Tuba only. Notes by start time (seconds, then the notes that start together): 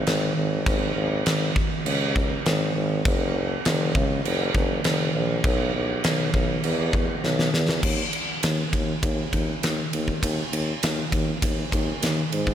0.07 G#1
0.37 G#1
0.66 G#1
0.96 G#1
1.26 G#1
1.85 C#2
2.46 G#1
2.76 G#1
3.05 F#1
3.66 F#1
3.95 C#2
4.25 F#1
4.55 F#1
4.85 F#1
5.14 A#1
5.44 B1
5.74 B1
6.04 B1
6.34 B1
6.64 E2
7.24 B1
7.53 E2
7.83 D#2
8.43 D#2
8.73 D#2
9.03 D#2
9.33 D#2
9.62 D#2
9.93 D#2
10.23 D#2
10.52 D#2
10.82 D#2
11.13 D#2
11.43 D#2
11.72 D#2
12.02 D#2
12.32 G#2